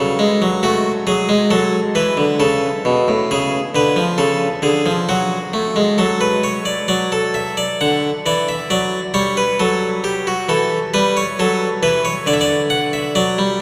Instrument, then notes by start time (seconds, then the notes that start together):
harpsichord
Already playing: C#3 A4
0.19 G#3
0.42 F#3
0.63 A3 F#4
1.07 F#3 G#4
1.29 G#3
1.51 F#3 A4
1.95 E3 B4
2.17 D3
2.40 C#3 A4
2.85 B2
3.08 A2
3.31 C#3 G#4
3.75 D3 B4
3.96 F3
4.18 C#3 A4
4.62 D3 G#4
4.86 F3
5.09 F#3 F#4
5.54 A3
5.76 G#3
5.98 F#3 A4
6.21 B4
6.44 C#5
6.65 D5
6.88 F#3 D5
7.12 A4
7.34 E5
7.57 D5
7.81 D3 F#5
8.26 E3 D5
8.49 E5
8.70 F#3 D5
9.14 G3 C#5
9.37 B4
9.60 F#3 A4
10.04 G4
10.27 F#4
10.49 E3 A4
10.94 G3 B4
11.17 C#5
11.39 F#3 A4
11.83 E3 B4
12.05 C#5
12.26 D3 D5
12.33 E5
12.41 D5
12.70 F#5
12.93 E5
13.15 F#3 D5
13.38 G3